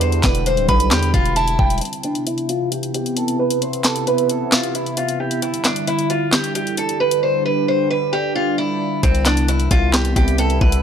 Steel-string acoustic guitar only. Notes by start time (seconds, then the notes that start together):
0.01 C5
0.24 B4
0.46 C5
0.69 B4
0.91 G4
1.14 F4
1.36 E4
1.82 C4
2.04 D4
2.27 E4
2.49 F4
2.72 G4
2.94 G4
3.17 A4
3.39 B4
3.62 C5
3.84 A4
4.07 B4
4.30 A4
4.52 F4
4.75 E4
4.97 F4
5.20 G4
5.42 E4
5.65 D4
5.88 E4
6.10 F4
6.32 G4
6.55 G4
6.78 A4
7.00 B4
7.23 C5
7.46 B4
7.68 C5
7.90 B4
8.13 G4
8.35 F4
8.58 E4
9.03 C4
9.26 D4
9.48 E4
9.71 F4
9.93 G4
10.16 G4
10.39 A4
10.61 B4